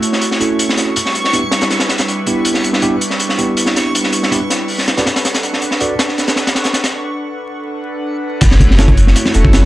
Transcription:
Already playing: analog synth pad A3 E4 F#4 C#5, synth texture C#6
0.02 closed hi-hat
0.13 snare
0.21 closed hi-hat
0.31 snare
0.40 tine electric piano C#4 E4 F#4 A4, closed hi-hat
0.59 closed hi-hat
0.69 snare
0.77 snare, closed hi-hat
0.96 analog synth pad G3 D4 E4 B4, closed hi-hat
1.06 snare
1.15 closed hi-hat
1.24 snare
1.33 tine electric piano B3 D4 E4 G4, closed hi-hat
1.51 snare, closed hi-hat
1.61 snare, closed hi-hat
1.70 snare, closed hi-hat
1.80 snare, closed hi-hat
1.89 snare, closed hi-hat
1.98 snare, closed hi-hat
2.08 closed hi-hat
2.26 tine electric piano B3 D4 E4 G4, closed hi-hat
2.45 closed hi-hat
2.54 snare
2.64 closed hi-hat
2.73 snare
2.82 tine electric piano B3 D4 E4 G4, closed hi-hat
3.01 closed hi-hat
3.10 snare
3.20 closed hi-hat
3.29 snare
3.38 tine electric piano B3 D4 E4 G4, closed hi-hat
3.57 closed hi-hat
3.66 snare
3.76 snare, closed hi-hat
3.94 analog synth pad G3 D4 E4 B4, closed hi-hat
4.03 snare
4.13 closed hi-hat
4.23 snare
4.32 tine electric piano B3 D4 E4 G4, closed hi-hat
4.50 snare, closed hi-hat
4.68 analog synth pad D4 A4 B4 F#5, open hi-hat
4.78 snare
4.88 snare, closed hi-hat
4.97 tine electric piano F#4 A4 B4 D5, snare, closed hi-hat
5.06 snare, closed hi-hat
5.16 snare, closed hi-hat
5.25 snare, closed hi-hat
5.34 snare, closed hi-hat
5.43 closed hi-hat
5.53 snare
5.62 closed hi-hat
5.71 snare
5.80 tine electric piano F#4 A4 B4 D5, closed hi-hat
5.99 snare, closed hi-hat
6.09 snare
6.18 snare, closed hi-hat
6.28 snare, closed hi-hat
6.36 snare, closed hi-hat
6.47 snare, closed hi-hat
6.55 snare, closed hi-hat
6.64 snare, closed hi-hat
6.73 snare, closed hi-hat
6.84 snare, closed hi-hat
7.67 analog synth pad D4 A4 B4 F#5
8.41 sub bass F#1, analog synth pad A3 E4 F#4 C#5, kick, closed hi-hat, crash
8.51 snare
8.60 kick, closed hi-hat
8.71 snare
8.79 tine electric piano C#4 E4 F#4 A4, snare, closed hi-hat
8.88 kick, closed hi-hat
8.97 analog synth pad A3 E4 F#4 C#5, closed hi-hat
9.07 snare
9.16 closed hi-hat
9.25 snare
9.34 sub bass E1, tine electric piano C#4 E4 F#4 A4, closed hi-hat
9.45 sub bass F#1, kick
9.53 snare, closed hi-hat

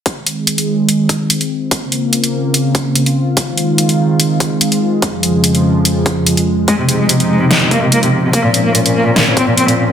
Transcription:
0.06 analog synth pad D#3 G#3 C4 F4, kick, closed hi-hat
0.27 closed hi-hat
0.47 closed hi-hat
0.58 closed hi-hat
0.89 closed hi-hat
1.09 kick, closed hi-hat
1.30 closed hi-hat
1.41 closed hi-hat
1.71 analog synth pad C#3 A#3, kick, closed hi-hat
1.92 closed hi-hat
2.13 closed hi-hat
2.24 closed hi-hat
2.54 closed hi-hat
2.75 kick, closed hi-hat
2.95 closed hi-hat
3.06 closed hi-hat
3.37 analog synth pad D#3 G#3, kick, closed hi-hat
3.58 closed hi-hat
3.78 closed hi-hat
3.89 closed hi-hat
4.20 closed hi-hat
4.40 kick, closed hi-hat
4.61 closed hi-hat
4.72 closed hi-hat
5.02 analog synth pad F2 C#3 F3, kick, closed hi-hat
5.23 closed hi-hat
5.44 closed hi-hat
5.55 closed hi-hat
5.85 closed hi-hat
6.06 kick, closed hi-hat
6.27 closed hi-hat
6.37 closed hi-hat
6.68 analog synth pad F3 C4 D#4, cello G#3, kick, closed hi-hat
6.79 cello C3
6.89 cello C3, closed hi-hat
7.00 cello G#3
7.09 cello C3, closed hi-hat
7.20 cello C3, closed hi-hat
7.30 cello G#3
7.41 cello C3
7.51 cello C3, snare, closed hi-hat
7.62 cello C3
7.71 cello A#3, kick, closed hi-hat
7.82 cello C3
7.92 cello A#3, closed hi-hat
8.03 cello C3, closed hi-hat
8.13 cello C3
8.24 cello C3
8.33 analog synth pad A#3 C#4, cello A#3, kick, closed hi-hat
8.44 cello A#2
8.54 cello A#2, closed hi-hat
8.65 cello A#3
8.75 cello A#2, closed hi-hat
8.86 cello A#2, closed hi-hat
8.95 cello A#3
9.06 cello A#2
9.16 cello A#2, snare, closed hi-hat
9.27 cello A#2
9.37 cello C4, kick, closed hi-hat
9.48 cello A#2
9.58 cello C4, closed hi-hat
9.68 cello A#2, closed hi-hat
9.78 cello A#2

